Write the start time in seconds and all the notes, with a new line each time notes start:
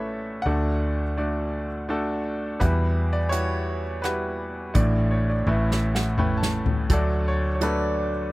Already playing: A1 A2 A3 C#4 E4 A4 B4 C#5 D5 E5
0.42 D2 A3 D4 A4 D5 F#5
0.46 D2 D3 F#4
1.17 A3 D4 F#4 D5
1.89 A3 D4 F#4 A4
2.60 E2 E3 G3 E4 F#4 G4 B4 F#5, kick, closed hi-hat
3.13 D5
3.29 G3 E4 F#4 G4 B4 C#5 F#5, closed hi-hat
4.02 G3 E4 F#4 G4 B4 F#5, cross-stick, closed hi-hat
4.74 A1 A2 A3 D4 E4 D5, kick, closed hi-hat
5.11 C#5
5.30 D5
5.46 A1 A2 A3 C#4 E4 B4 E5, kick
5.71 E5, snare
5.95 F#5, snare
6.18 A3 C#4 E4 B4 G5, mid tom
6.37 A5
6.43 snare
6.66 floor tom
6.90 D2 D3 F#3 A3 D4 F#4 A4 D5, kick, closed hi-hat
7.28 C#5
7.55 C#5
7.61 F#3 A3 D4 F#4 A4 B4 D5, closed hi-hat